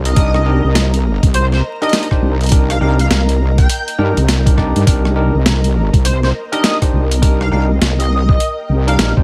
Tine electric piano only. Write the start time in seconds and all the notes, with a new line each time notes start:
0.16 D4 D#4 G4 A#4
0.46 D4 D#4 G4 A#4
1.82 D4 D#4 G4 A#4
2.11 D4 D#4 G4 C5
2.52 D4 D#4 G4 A#4
2.81 D4 D#4 G4 A#4
3.98 D4 D#4 G4 A#4
4.46 D4 D#4 G4 A#4
4.57 D4 D#4 G4 D5
4.87 D4 D#4 G4 A#4
5.16 D4 D#4 G4 A#4
6.52 D4 D#4 G4 A#4
6.82 D4 D#4 G4 C5
7.22 D4 D#4 G4 A#4
7.52 D4 D#4 G4 A#4
8.87 D4 D#4 G4 A#4
9.17 D4 D#4 G4 C5